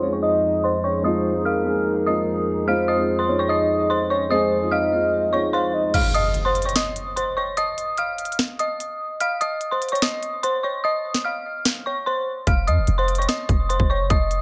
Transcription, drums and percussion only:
5.94 closed hi-hat medium
5.94 crash medium
6.15 closed hi-hat medium
6.34 closed hi-hat medium
6.55 closed hi-hat medium
6.62 closed hi-hat medium
6.69 closed hi-hat medium
6.76 snare loud
6.76 closed hi-hat medium
6.96 closed hi-hat medium
7.17 closed hi-hat medium
7.57 closed hi-hat medium
7.78 closed hi-hat medium
7.98 closed hi-hat medium
8.18 closed hi-hat medium
8.25 closed hi-hat medium
8.32 closed hi-hat medium
8.39 snare loud
8.39 closed hi-hat medium
8.59 closed hi-hat medium
8.80 closed hi-hat medium
9.20 closed hi-hat medium
9.41 closed hi-hat medium
9.61 closed hi-hat medium
9.82 closed hi-hat medium
9.89 closed hi-hat medium
9.95 closed hi-hat medium
10.02 snare loud
10.02 closed hi-hat medium
10.23 closed hi-hat medium
10.43 closed hi-hat medium
11.14 snare medium
11.65 snare loud
12.47 kick loud
12.47 closed hi-hat medium
12.68 closed hi-hat medium
12.87 closed hi-hat medium
13.08 closed hi-hat medium
13.15 closed hi-hat medium
13.22 closed hi-hat medium
13.29 snare loud
13.29 closed hi-hat medium
13.49 kick loud
13.49 closed hi-hat medium
13.70 closed hi-hat medium
13.80 kick medium
14.10 kick loud
14.10 closed hi-hat medium
14.31 closed hi-hat medium

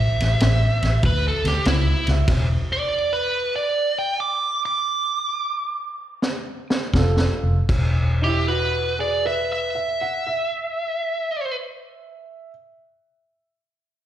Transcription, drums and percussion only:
0.20 snare soft
0.20 ride medium
0.40 snare loud
0.40 ride medium
0.82 snare soft
0.82 ride medium
1.03 kick loud
1.03 ride medium
1.45 snare soft
1.45 ride medium
1.65 snare medium
1.65 ride medium
2.07 snare soft
2.07 ride medium
2.28 kick loud
2.28 snare soft
2.28 crash medium
2.28 ride medium
6.22 snare medium
6.70 snare medium
6.94 kick medium
6.94 snare medium
7.19 snare medium
7.69 kick loud
7.69 crash medium

